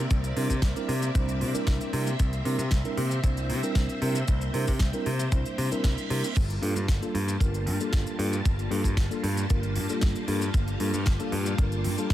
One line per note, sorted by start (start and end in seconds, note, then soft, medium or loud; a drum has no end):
0.00 6.33 A#3 medium
0.00 6.33 C4 medium
0.00 1.90 D5 medium
0.00 6.33 E5 medium
0.11 0.31 C2 loud
0.11 kick loud
0.11 closed hi-hat medium
0.11 shaker medium
0.24 closed hi-hat soft
0.24 shaker soft
0.36 0.47 C3 loud
0.36 0.52 G3 medium
0.36 0.52 C4 medium
0.36 0.52 D4 medium
0.36 0.52 E4 medium
0.36 0.53 A#4 medium
0.36 open hi-hat loud
0.50 0.60 C3 medium
0.50 kick medium
0.50 closed hi-hat soft
0.50 shaker medium
0.62 0.73 C2 medium
0.62 kick loud
0.62 snare loud
0.62 closed hi-hat medium
0.62 shaker medium
0.76 0.91 G3 medium
0.76 0.91 C4 medium
0.76 0.91 D4 medium
0.76 0.91 E4 medium
0.76 0.91 A#4 loud
0.76 closed hi-hat soft
0.76 shaker soft
0.89 1.09 C3 loud
0.89 open hi-hat loud
1.02 closed hi-hat soft
1.02 shaker medium
1.14 1.42 C2 loud
1.14 1.51 G3 medium
1.14 1.51 C4 medium
1.14 1.51 D4 medium
1.14 1.51 E4 medium
1.14 1.52 C5 medium
1.14 kick loud
1.14 closed hi-hat medium
1.14 shaker medium
1.29 closed hi-hat soft
1.29 shaker soft
1.41 1.52 C3 medium
1.41 open hi-hat loud
1.54 1.90 G3 medium
1.54 1.90 C4 medium
1.54 1.90 D4 medium
1.54 1.90 E4 medium
1.54 1.90 A#4 medium
1.54 muted picked electric bass stroke soft
1.54 closed hi-hat soft
1.54 shaker medium
1.67 1.78 C2 medium
1.67 kick loud
1.67 snare loud
1.67 closed hi-hat medium
1.67 shaker medium
1.81 closed hi-hat soft
1.81 shaker soft
1.93 2.14 C3 loud
1.93 2.09 G3 medium
1.93 2.09 C4 medium
1.93 2.09 D4 medium
1.93 2.09 E4 medium
1.93 2.09 A#4 medium
1.93 6.33 C5 medium
1.93 open hi-hat loud
2.07 closed hi-hat soft
2.07 shaker medium
2.19 2.40 C2 loud
2.19 kick loud
2.19 closed hi-hat medium
2.19 shaker medium
2.33 closed hi-hat soft
2.33 shaker soft
2.45 2.56 C3 loud
2.45 2.61 G3 medium
2.45 2.61 C4 medium
2.45 2.61 D4 medium
2.45 2.61 E4 medium
2.45 2.61 A#4 loud
2.45 open hi-hat loud
2.59 2.69 C3 medium
2.59 closed hi-hat soft
2.59 shaker medium
2.71 2.82 C2 medium
2.71 kick loud
2.71 snare loud
2.71 closed hi-hat medium
2.71 shaker medium
2.84 3.00 G3 medium
2.84 3.00 C4 medium
2.84 3.00 D4 medium
2.84 3.00 E4 medium
2.84 3.00 A#4 loud
2.84 closed hi-hat soft
2.84 shaker soft
2.97 3.18 C3 loud
2.97 open hi-hat loud
3.11 closed hi-hat soft
3.11 shaker medium
3.23 3.51 C2 loud
3.23 3.60 G3 medium
3.23 3.60 C4 medium
3.23 3.60 D4 medium
3.23 3.60 E4 medium
3.23 3.60 C5 medium
3.23 kick loud
3.23 closed hi-hat medium
3.23 shaker medium
3.37 closed hi-hat soft
3.37 shaker soft
3.50 3.60 C3 medium
3.50 open hi-hat loud
3.63 3.99 G3 medium
3.63 3.99 C4 medium
3.63 3.99 D4 medium
3.63 3.99 E4 medium
3.63 3.99 A#4 medium
3.63 closed hi-hat soft
3.63 shaker medium
3.75 3.86 C2 medium
3.75 kick loud
3.75 snare loud
3.75 closed hi-hat medium
3.75 shaker medium
3.89 closed hi-hat soft
3.89 shaker soft
4.01 4.23 C3 loud
4.01 4.17 G3 medium
4.01 4.18 C4 medium
4.01 4.18 D4 medium
4.01 4.18 E4 medium
4.01 4.18 A#4 medium
4.01 open hi-hat loud
4.15 closed hi-hat soft
4.15 shaker medium
4.28 4.49 C2 loud
4.28 kick loud
4.28 closed hi-hat medium
4.28 shaker medium
4.41 closed hi-hat soft
4.41 shaker soft
4.53 4.65 C3 loud
4.53 4.69 G3 medium
4.53 4.70 C4 medium
4.53 4.70 D4 medium
4.53 4.70 E4 medium
4.53 4.70 A#4 medium
4.53 open hi-hat loud
4.68 4.78 C3 medium
4.68 kick medium
4.68 open hi-hat medium
4.68 shaker medium
4.79 4.91 C2 medium
4.79 kick loud
4.79 snare loud
4.79 closed hi-hat medium
4.79 shaker medium
4.93 5.08 G3 medium
4.93 5.08 C4 medium
4.93 5.09 D4 medium
4.93 5.09 E4 medium
4.93 5.09 A#4 loud
4.93 closed hi-hat soft
4.93 shaker soft
5.06 5.27 C3 loud
5.06 open hi-hat loud
5.20 closed hi-hat soft
5.20 shaker medium
5.32 5.43 C2 medium
5.32 5.68 G3 medium
5.32 5.68 C4 medium
5.32 5.69 D4 medium
5.32 5.69 E4 medium
5.32 5.69 C5 medium
5.32 kick loud
5.32 closed hi-hat medium
5.32 reverse cymbal medium
5.32 shaker medium
5.46 closed hi-hat soft
5.46 shaker soft
5.58 5.69 C3 medium
5.58 open hi-hat loud
5.71 6.07 G3 medium
5.71 6.07 C4 medium
5.71 6.08 D4 medium
5.71 6.08 E4 medium
5.71 6.08 A#4 medium
5.71 muted picked electric bass stroke soft
5.71 closed hi-hat soft
5.71 shaker medium
5.84 5.95 C2 medium
5.84 kick loud
5.84 snare loud
5.84 closed hi-hat medium
5.84 shaker medium
5.98 closed hi-hat soft
5.98 shaker soft
6.10 6.21 C3 loud
6.10 6.26 G3 medium
6.10 6.26 C4 medium
6.10 6.26 D4 medium
6.10 6.26 E4 medium
6.10 6.26 A#4 medium
6.10 open hi-hat loud
6.24 closed hi-hat soft
6.24 shaker medium
6.36 6.57 G1 loud
6.36 12.14 G3 medium
6.36 12.14 A#3 medium
6.36 12.14 F4 medium
6.36 12.14 A5 medium
6.36 kick loud
6.36 closed hi-hat medium
6.36 crash medium
6.36 shaker medium
6.50 closed hi-hat soft
6.50 shaker soft
6.62 6.73 G2 loud
6.62 6.78 G3 medium
6.62 6.78 A#3 medium
6.62 6.78 D4 medium
6.62 6.78 F4 medium
6.62 6.79 A4 loud
6.62 open hi-hat loud
6.76 6.86 G2 medium
6.76 closed hi-hat soft
6.76 shaker medium
6.88 6.99 G1 medium
6.88 kick loud
6.88 snare loud
6.88 closed hi-hat medium
6.88 shaker medium
7.02 7.17 G3 medium
7.02 7.17 A#3 medium
7.02 7.17 D4 medium
7.02 7.17 F4 medium
7.02 7.17 A4 loud
7.02 closed hi-hat soft
7.02 shaker soft
7.15 7.35 G2 medium
7.15 open hi-hat loud
7.28 closed hi-hat soft
7.28 shaker medium
7.40 7.68 G1 medium
7.40 7.77 G3 medium
7.40 7.77 A#3 medium
7.40 7.77 D4 medium
7.40 7.77 F4 medium
7.40 7.78 A#4 medium
7.40 kick loud
7.40 closed hi-hat medium
7.40 shaker medium
7.54 closed hi-hat soft
7.54 shaker soft
7.66 7.77 G2 medium
7.66 open hi-hat loud
7.80 8.16 G3 medium
7.80 8.16 A#3 medium
7.80 8.16 D4 medium
7.80 8.16 F4 medium
7.80 8.17 A4 medium
7.80 closed hi-hat soft
7.80 shaker medium
7.93 8.04 G1 medium
7.93 kick loud
7.93 snare loud
7.93 closed hi-hat medium
7.93 shaker medium
8.07 closed hi-hat soft
8.07 shaker soft
8.19 8.40 G2 loud
8.19 8.35 G3 medium
8.19 8.35 A#3 medium
8.19 8.35 D4 medium
8.19 8.35 F4 medium
8.19 8.35 A4 medium
8.19 open hi-hat loud
8.33 closed hi-hat soft
8.33 shaker medium
8.45 8.66 G1 loud
8.45 kick loud
8.45 closed hi-hat medium
8.45 shaker medium
8.59 closed hi-hat soft
8.59 shaker soft
8.71 8.82 G2 loud
8.71 8.87 G3 medium
8.71 8.87 A#3 medium
8.71 8.87 D4 medium
8.71 8.87 F4 medium
8.71 8.87 A4 loud
8.71 open hi-hat loud
8.84 8.95 G2 medium
8.84 kick medium
8.84 closed hi-hat soft
8.84 shaker medium
8.97 9.08 G1 medium
8.97 kick loud
8.97 snare loud
8.97 closed hi-hat medium
8.97 shaker medium
9.10 9.26 G3 medium
9.10 9.26 A#3 medium
9.10 9.26 D4 medium
9.10 9.26 F4 medium
9.10 9.26 A4 loud
9.10 closed hi-hat soft
9.10 shaker soft
9.23 9.44 G2 loud
9.23 open hi-hat loud
9.37 closed hi-hat soft
9.37 shaker medium
9.49 9.77 G1 loud
9.49 9.86 G3 medium
9.49 9.86 A#3 medium
9.49 9.86 D4 medium
9.49 9.86 F4 medium
9.49 9.86 A#4 medium
9.49 kick loud
9.49 closed hi-hat medium
9.49 shaker medium
9.63 closed hi-hat soft
9.63 shaker soft
9.76 9.86 G2 medium
9.76 open hi-hat loud
9.89 10.25 G3 medium
9.89 10.25 A#3 medium
9.89 10.25 D4 medium
9.89 10.25 F4 medium
9.89 10.25 A4 medium
9.89 muted picked electric bass stroke soft
9.89 closed hi-hat soft
9.89 shaker medium
10.01 10.13 G1 medium
10.01 kick loud
10.01 snare loud
10.01 closed hi-hat medium
10.01 shaker medium
10.16 closed hi-hat soft
10.16 shaker soft
10.27 10.49 G2 loud
10.27 10.43 G3 medium
10.27 10.44 A#3 medium
10.27 10.44 D4 medium
10.27 10.44 F4 medium
10.27 10.44 A4 medium
10.27 open hi-hat loud
10.42 closed hi-hat soft
10.42 shaker medium
10.54 10.75 G1 loud
10.54 kick loud
10.54 closed hi-hat medium
10.54 shaker medium
10.68 closed hi-hat soft
10.68 shaker soft
10.80 10.91 G2 loud
10.80 10.96 G3 medium
10.80 10.96 A#3 medium
10.80 10.96 D4 medium
10.80 10.96 F4 medium
10.80 10.96 A4 loud
10.80 open hi-hat loud
10.94 11.04 G2 medium
10.94 closed hi-hat soft
10.94 shaker medium
11.06 11.17 G1 medium
11.06 kick loud
11.06 snare loud
11.06 closed hi-hat medium
11.06 shaker medium
11.19 11.35 G3 medium
11.19 11.35 A#3 medium
11.19 11.35 D4 medium
11.19 11.35 F4 medium
11.19 11.35 A4 loud
11.19 closed hi-hat soft
11.19 shaker soft
11.32 11.53 G2 loud
11.32 open hi-hat loud
11.46 closed hi-hat soft
11.46 shaker medium
11.58 11.86 G1 loud
11.58 11.95 G3 medium
11.58 11.95 A#3 medium
11.58 11.95 D4 medium
11.58 11.95 F4 medium
11.58 11.95 A#4 medium
11.58 kick loud
11.58 closed hi-hat medium
11.58 shaker medium
11.72 closed hi-hat soft
11.72 shaker soft
11.84 11.95 G2 medium
11.84 open hi-hat loud
11.98 12.14 G3 medium
11.98 12.14 A#3 medium
11.98 12.14 D4 medium
11.98 12.14 F4 medium
11.98 12.14 A4 medium
11.98 closed hi-hat soft
11.98 shaker medium
12.10 12.14 G1 medium
12.10 kick loud
12.10 snare loud
12.10 closed hi-hat medium
12.10 shaker medium